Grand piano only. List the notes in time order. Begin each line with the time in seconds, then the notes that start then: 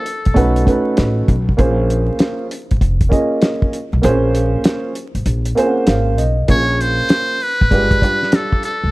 0.34 A3 C#4 D#4 F#4 B4
0.65 A3 C#4 D#4 F#4 B4
1.57 A#3 C#4 F4 G#4 C5
3.09 A#3 C#4 F4 G#4 D#5
4.02 A#3 C4 F4 G#4 C5
4.09 C#4
5.55 A#3 C4 F4 G#4 C5 G#5
5.63 C#4
5.67 F#5
5.88 F5
6.18 D#5
6.48 A#3 C#4 F4 G#4 A#4
7.70 G#3 D4 F4 G4 B4
8.01 G3 D4 F4 G4 D5